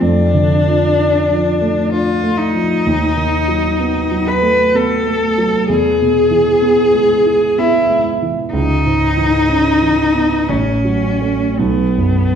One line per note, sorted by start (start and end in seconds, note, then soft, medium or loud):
0.01 2.81 F2 soft
0.01 1.92 D4 medium
0.34 0.85 D3 soft
0.66 1.17 F3 soft
0.98 1.49 D4 soft
1.30 1.80 F3 soft
1.61 2.11 A3 soft
1.92 2.42 D4 soft
1.92 2.39 F4 medium
2.24 2.73 A3 soft
2.38 4.29 D#4 medium
2.54 2.85 F3 soft
2.86 5.65 D#2 soft
3.17 3.67 D#3 soft
3.48 3.99 F#3 soft
3.80 4.30 B3 soft
4.11 4.62 F#3 soft
4.28 4.77 B4 medium
4.42 4.93 A3 soft
4.75 5.25 B3 soft
4.75 5.69 A4 medium
5.06 5.56 A3 soft
5.38 5.69 F#3 soft
5.69 8.49 E2 soft
5.69 7.60 G#4 medium
6.01 6.49 B2 soft
6.31 6.81 E3 soft
6.62 7.13 B3 soft
6.93 7.44 G#3 soft
7.25 7.76 E4 soft
7.58 8.09 B3 soft
7.58 8.05 E4 medium
7.90 8.41 G#3 soft
8.22 8.54 E3 soft
8.53 10.44 C#2 soft
8.53 10.50 D#4 medium
8.86 9.36 G#2 soft
9.17 9.68 E3 soft
9.49 10.01 C#4 soft
9.82 10.35 E3 soft
10.15 10.49 B3 soft
10.49 11.55 A1 soft
10.49 11.60 C#4 medium
10.85 11.43 F#3 soft
11.21 11.55 A3 soft
11.21 11.55 C#4 soft
11.59 12.35 B1 soft
11.59 12.35 B3 medium
11.98 12.35 F#2 soft